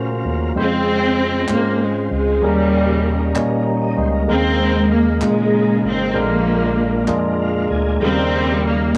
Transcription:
Already playing: A#2 C#3 A3 A#3 C#4 F4 F#4 A#4 C5 C#5 F5
0.25 D#2
0.55 F2 C#3 G#3 C4 E4 C5
0.63 F4
1.48 G#2 G#3 A#3 C4 C#4 F4 C5, clap
1.83 G#3
2.11 C#2 G#3
2.42 D#2 A#2 C#3 D#3 G3 A#3 C#4 D#4 A#4
3.35 A#2 G3 A#3 C#4 D#4 C#5, clap
3.66 A#5
3.82 D#5
3.96 C#2 C5 D#5
4.14 A#4
4.27 D#2 C#3 D#3 G#3 A#3 C4 D#4 A#4
4.93 A#3
5.21 A#2 C#3 G#3 A#3 C#4 D#4 F4, clap
5.84 G#1
5.88 C4
6.14 A#1 A#2 D3 G#3 A#3 D4 F4 A#4
6.18 F3 A#3
7.08 F2 G#3 A#3 D4 F4 G#4, clap
7.41 F5
7.70 D2 G#5
8.00 D#2 C#3 D#3 G3 A#3 C4 D#4 A4 A#4
8.10 A#4
8.67 A#3
8.94 A#2

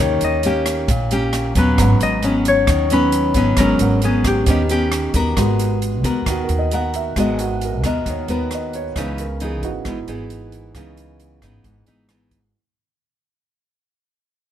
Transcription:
Already playing: A#3 C#4 D#4 G4 A#4 C#5
0.00 D#2 D#3 A#4 C#5 G5
0.21 D#2 D#5, closed hi-hat
0.43 A#3 C#4 G4, closed hi-hat
0.66 cross-stick, closed hi-hat
0.88 A#1 A#2, kick, closed hi-hat
1.11 A#3 C#4 G4, closed hi-hat
1.33 cross-stick, closed hi-hat
1.55 D#2 F#3 B3 C#4 B4, kick, closed hi-hat
1.76 G#1 G#2 C#4 A#5, kick, cross-stick, closed hi-hat
1.80 B4 F#5
2.00 G#1 D#5, closed hi-hat
2.22 F#3 B3 C#4, closed hi-hat
2.45 C#5, closed hi-hat
2.67 D#2 D#3, kick, cross-stick, closed hi-hat
2.90 F#3 B3 C#4 B4, closed hi-hat
3.12 closed hi-hat
3.34 G#1 F#3 B3 C#4, kick, closed hi-hat
3.57 G#1 G#2 F#3 B3 C#4 A#4, kick, cross-stick, closed hi-hat
3.79 G#1 C#4 A#4 B4 F#5, closed hi-hat
4.02 F#3 B3 C#4 G#4, closed hi-hat
4.24 G4, kick, cross-stick, closed hi-hat
4.44 D#2 B3 C#4 G4, kick, closed hi-hat
4.48 D#3 C#4 G4 B4 D#5
4.69 B3 C#4 G4, closed hi-hat
4.92 cross-stick, closed hi-hat
5.14 D#2 B3 F#4 A#4, kick, closed hi-hat
5.36 G#1 G#3 B3 F#4, kick, cross-stick, closed hi-hat
5.59 closed hi-hat
5.82 closed hi-hat
6.04 D#2 B3 F#4 A#4, kick, closed hi-hat
6.26 D#2 D#3 F#4, kick, cross-stick, closed hi-hat
6.44 A#4
6.49 D#2, closed hi-hat
6.59 D#5
6.71 B3 F#4 A#4 F#5, closed hi-hat
6.94 E5, closed hi-hat
7.16 G#1 G#3 B3 F#4 A#4 D#5, kick, cross-stick, closed hi-hat
7.39 F#4, closed hi-hat
7.61 A#4, closed hi-hat
7.83 D#2 B3 F#4 A#4 D#5, kick, cross-stick, closed hi-hat
8.06 D#2 D#3, kick, closed hi-hat
8.10 C#5
8.28 D#2 B3 F#4 A#4 B4, closed hi-hat
8.51 D#5, cross-stick, closed hi-hat
8.73 C#5, closed hi-hat
8.96 C#2 C#3 E3 B3 D#4 B4, kick, cross-stick, closed hi-hat
9.18 A#4, closed hi-hat
9.40 E3 B3 D#4, closed hi-hat
9.44 G#4
9.63 G#1 E3 B3 D#4 F#4, kick, closed hi-hat
9.85 G#1 G#2 E3 B3 D#4 E4, kick, cross-stick, closed hi-hat
10.08 G#1 E3 B3 D#4 G#4, closed hi-hat
10.30 closed hi-hat
10.52 closed hi-hat
10.75 C#2 C#3 E3 B3 D#4, kick, cross-stick, closed hi-hat
10.97 closed hi-hat
11.20 closed hi-hat
11.42 G#1 E3 B3 D#4, kick, cross-stick, closed hi-hat
11.64 G#1 G#2, kick, closed hi-hat
11.86 G#1 E3 B3 D#4, closed hi-hat
12.09 E3 B3 D#4, cross-stick, closed hi-hat
12.31 kick, closed hi-hat

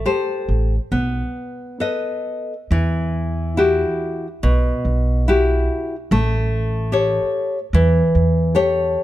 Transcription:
0.06 G4 A4 C5
0.49 A1
0.92 B1 B3
1.80 A4 B4 D#5
2.71 E2 E3
3.57 E4 F#4 G4
4.43 B1 B2
4.85 B1
5.28 E4 F#4 G4
6.11 A1 A3
6.92 G4 A4 C#5
7.73 E2 E3
8.15 E2
8.55 G4 A4 C#5

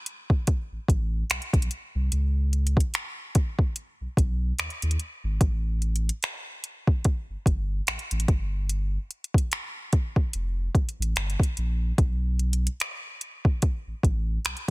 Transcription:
0.06 closed hi-hat
0.30 kick
0.47 kick, closed hi-hat
0.72 A1
0.88 A1, kick, closed hi-hat
1.30 B1, finger snap, closed hi-hat
1.42 closed hi-hat
1.53 B1, kick, closed hi-hat
1.62 closed hi-hat
1.71 closed hi-hat
1.95 C2
2.12 C#2, closed hi-hat
2.53 closed hi-hat
2.67 closed hi-hat
2.77 kick, closed hi-hat
2.94 finger snap, closed hi-hat
3.35 kick, closed hi-hat
3.59 kick
3.76 closed hi-hat
4.01 B1
4.17 B1, kick, closed hi-hat
4.59 D#2, finger snap, closed hi-hat
4.70 closed hi-hat
4.82 D#2, closed hi-hat
4.91 closed hi-hat
5.00 closed hi-hat
5.24 G#1
5.41 A1, kick, closed hi-hat
5.82 closed hi-hat
5.96 closed hi-hat
6.09 closed hi-hat
6.23 finger snap, closed hi-hat
6.64 closed hi-hat
6.87 kick
7.04 kick, closed hi-hat
7.29 G1
7.46 G1, kick, closed hi-hat
7.87 A1, finger snap, closed hi-hat
7.99 closed hi-hat
8.11 A1, closed hi-hat
8.20 closed hi-hat
8.28 G1, kick, closed hi-hat
8.69 closed hi-hat
9.11 closed hi-hat
9.24 closed hi-hat
9.34 kick, closed hi-hat
9.52 finger snap, closed hi-hat
9.93 kick, closed hi-hat
10.16 kick
10.33 F1, closed hi-hat
10.75 A1, kick, closed hi-hat
10.89 closed hi-hat
10.99 A1, closed hi-hat
11.16 G1, finger snap, closed hi-hat
11.30 closed hi-hat
11.40 kick, closed hi-hat
11.57 A#1, closed hi-hat
11.98 B1, kick, closed hi-hat
12.39 closed hi-hat
12.53 closed hi-hat
12.67 closed hi-hat
12.80 finger snap, closed hi-hat
13.21 closed hi-hat
13.45 kick
13.62 kick, closed hi-hat
13.87 A1
14.03 A1, kick, closed hi-hat
14.45 B1, finger snap, closed hi-hat
14.57 closed hi-hat

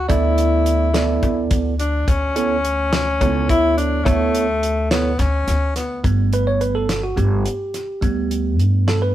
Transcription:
0.08 D2 B3 E4 A4 D5, kick, closed hi-hat
0.38 closed hi-hat
0.66 closed hi-hat
0.94 B3 E4 A4 D5, snare, closed hi-hat
1.23 D2, kick, closed hi-hat
1.51 D2, kick, closed hi-hat
1.79 D4, closed hi-hat
2.08 D2 C#4, kick, closed hi-hat
2.36 B3 E4 A4 C#5, closed hi-hat
2.65 closed hi-hat
2.93 snare, closed hi-hat
3.21 C#2 B3 E4 A4 C#5, kick, closed hi-hat
3.49 D2 E4, kick, closed hi-hat
3.77 D4, closed hi-hat
4.05 D2 A3 B3 E4 A4 C#5, kick, closed hi-hat
4.35 closed hi-hat
4.63 closed hi-hat
4.91 B3 E4 A4 C#5, snare, closed hi-hat
5.19 D2 C#4, kick, snare, closed hi-hat
5.48 D2, snare, closed hi-hat
5.76 B3, snare, closed hi-hat
6.04 G1 G3 A3 B3, kick, closed hi-hat
6.33 B4, closed hi-hat
6.47 C#5
6.61 B4, closed hi-hat
6.75 A4
6.89 snare, closed hi-hat
7.03 F#4
7.16 G1 G3 A3 B3 G4, kick, closed hi-hat
7.46 closed hi-hat
7.74 snare, closed hi-hat
8.01 D2 G3 A3 B3, kick, closed hi-hat
8.31 closed hi-hat
8.59 G2, closed hi-hat
8.88 A4, snare, closed hi-hat
9.02 B4

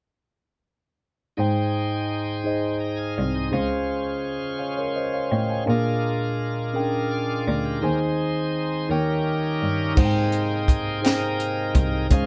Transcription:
1.37 G#2 G#3 D#4 G#4 C5 G5
2.44 D#4 G#4 C5 D#5
2.80 G5 A#5
2.96 F5 G#5
3.16 C2 F5
3.34 C5 D#5
3.51 C#2 C#3 G#3 C#4 F4 G#4 C5 F5
4.59 C#5 F5
4.77 A#4 C#5
4.96 C5 D#5
5.14 C#5 F5
5.31 A2 D#5 G5
5.50 F5 G#5
5.66 A#2 G#3 D4 F4 G#4 A#4 F5
6.73 C#4 G#4 A#4 G5
6.80 D4
7.11 D5 F5
7.48 D2 A#4 D5
7.65 G4 A#4
7.81 D#2 D#3 G#3 C4 D#4 G#4 C5 G#5
8.89 D#2 D#3 G3 A#3 C#4 D#4 G4 A#4 C#5 G5
9.62 G2
9.95 G#2 C3 G#3 A#3 D#4 G#4 C5 F#5 G5, kick, crash
10.05 G5
10.32 closed hi-hat
10.68 kick, closed hi-hat
11.02 D#4 G#4 A#4 C5 G5, closed hi-hat
11.06 snare
11.40 closed hi-hat
11.75 C2, kick, closed hi-hat
12.10 C#2 C#3 D#3 F3 C#4 F4 G#4 C5 F5, kick, closed hi-hat

